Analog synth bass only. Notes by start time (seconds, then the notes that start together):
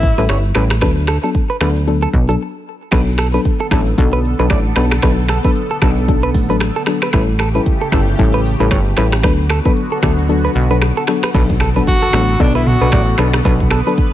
Already playing: A1
0.18 A1
0.29 G1
0.56 A1
0.82 D2
1.61 D2
2.13 B1
2.92 B1
3.71 A1
3.98 B1
4.39 B1
4.50 A1
4.77 B1
5.03 B1
5.82 B1
6.35 A1
7.13 A1
7.92 G1
8.19 A1
8.60 A1
8.71 G1
8.98 A1
9.24 D2
10.03 D2
10.55 B1
11.35 B1
12.13 A1
12.40 B1
12.81 B1
12.92 A1
13.19 B1
13.45 B1